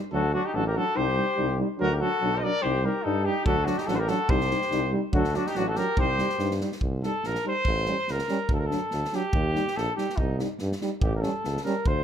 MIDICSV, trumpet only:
0, 0, Header, 1, 2, 480
1, 0, Start_track
1, 0, Tempo, 419874
1, 133, Time_signature, 2, 2, 24, 8
1, 13763, End_track
2, 0, Start_track
2, 0, Title_t, "Trumpet"
2, 0, Program_c, 0, 56
2, 142, Note_on_c, 0, 69, 80
2, 361, Note_off_c, 0, 69, 0
2, 386, Note_on_c, 0, 66, 84
2, 520, Note_on_c, 0, 67, 66
2, 537, Note_off_c, 0, 66, 0
2, 621, Note_on_c, 0, 69, 88
2, 639, Note_off_c, 0, 67, 0
2, 751, Note_off_c, 0, 69, 0
2, 761, Note_on_c, 0, 70, 81
2, 882, Note_on_c, 0, 69, 96
2, 899, Note_off_c, 0, 70, 0
2, 1102, Note_on_c, 0, 72, 92
2, 1119, Note_off_c, 0, 69, 0
2, 1816, Note_off_c, 0, 72, 0
2, 2059, Note_on_c, 0, 70, 103
2, 2231, Note_off_c, 0, 70, 0
2, 2231, Note_on_c, 0, 70, 67
2, 2292, Note_on_c, 0, 69, 105
2, 2309, Note_off_c, 0, 70, 0
2, 2727, Note_on_c, 0, 75, 80
2, 2744, Note_off_c, 0, 69, 0
2, 2788, Note_on_c, 0, 74, 108
2, 2805, Note_off_c, 0, 75, 0
2, 3000, Note_on_c, 0, 72, 91
2, 3017, Note_off_c, 0, 74, 0
2, 3264, Note_on_c, 0, 70, 80
2, 3281, Note_off_c, 0, 72, 0
2, 3481, Note_on_c, 0, 69, 96
2, 3499, Note_off_c, 0, 70, 0
2, 3719, Note_on_c, 0, 67, 89
2, 3736, Note_off_c, 0, 69, 0
2, 3940, Note_off_c, 0, 67, 0
2, 3947, Note_on_c, 0, 69, 98
2, 4177, Note_on_c, 0, 66, 87
2, 4195, Note_off_c, 0, 69, 0
2, 4320, Note_on_c, 0, 67, 74
2, 4337, Note_off_c, 0, 66, 0
2, 4419, Note_on_c, 0, 69, 102
2, 4436, Note_off_c, 0, 67, 0
2, 4520, Note_on_c, 0, 72, 73
2, 4537, Note_off_c, 0, 69, 0
2, 4562, Note_on_c, 0, 70, 85
2, 4579, Note_off_c, 0, 72, 0
2, 4667, Note_on_c, 0, 69, 92
2, 4684, Note_off_c, 0, 70, 0
2, 4913, Note_on_c, 0, 72, 102
2, 4930, Note_off_c, 0, 69, 0
2, 5634, Note_off_c, 0, 72, 0
2, 5877, Note_on_c, 0, 69, 76
2, 6121, Note_on_c, 0, 66, 79
2, 6138, Note_off_c, 0, 69, 0
2, 6258, Note_on_c, 0, 67, 75
2, 6275, Note_off_c, 0, 66, 0
2, 6365, Note_on_c, 0, 66, 88
2, 6382, Note_off_c, 0, 67, 0
2, 6495, Note_on_c, 0, 69, 78
2, 6512, Note_off_c, 0, 66, 0
2, 6603, Note_on_c, 0, 70, 98
2, 6620, Note_off_c, 0, 69, 0
2, 6839, Note_off_c, 0, 70, 0
2, 6854, Note_on_c, 0, 72, 96
2, 7517, Note_off_c, 0, 72, 0
2, 8040, Note_on_c, 0, 69, 87
2, 8303, Note_on_c, 0, 70, 87
2, 8321, Note_off_c, 0, 69, 0
2, 8529, Note_off_c, 0, 70, 0
2, 8548, Note_on_c, 0, 72, 109
2, 9274, Note_on_c, 0, 70, 91
2, 9291, Note_off_c, 0, 72, 0
2, 9736, Note_off_c, 0, 70, 0
2, 9755, Note_on_c, 0, 69, 79
2, 9825, Note_on_c, 0, 70, 75
2, 9843, Note_off_c, 0, 69, 0
2, 9900, Note_on_c, 0, 69, 81
2, 9917, Note_off_c, 0, 70, 0
2, 10463, Note_on_c, 0, 67, 97
2, 10480, Note_off_c, 0, 69, 0
2, 11166, Note_on_c, 0, 69, 91
2, 11183, Note_off_c, 0, 67, 0
2, 11378, Note_off_c, 0, 69, 0
2, 11385, Note_on_c, 0, 67, 73
2, 11624, Note_on_c, 0, 63, 65
2, 11641, Note_off_c, 0, 67, 0
2, 11874, Note_off_c, 0, 63, 0
2, 12596, Note_on_c, 0, 67, 66
2, 12747, Note_off_c, 0, 67, 0
2, 12754, Note_on_c, 0, 70, 61
2, 12820, Note_on_c, 0, 69, 77
2, 12837, Note_off_c, 0, 70, 0
2, 13293, Note_off_c, 0, 69, 0
2, 13300, Note_on_c, 0, 70, 75
2, 13570, Note_on_c, 0, 72, 81
2, 13587, Note_off_c, 0, 70, 0
2, 13763, Note_off_c, 0, 72, 0
2, 13763, End_track
0, 0, End_of_file